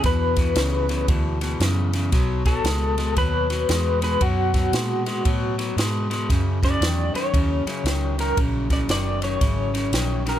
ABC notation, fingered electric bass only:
X:1
M:4/4
L:1/8
Q:"Swing" 1/4=115
K:B
V:1 name="Fingered electric bass" clef=bass
E,,2 C,,2 =D,,2 F,,2 | B,,,2 C,,2 D,,2 E,,2 | F,,2 A,,2 =A,,2 G,,2 | F,,2 E,, z D,, z C,,2 |
A,,,2 F,,,2 G,,,2 A,,,2 |]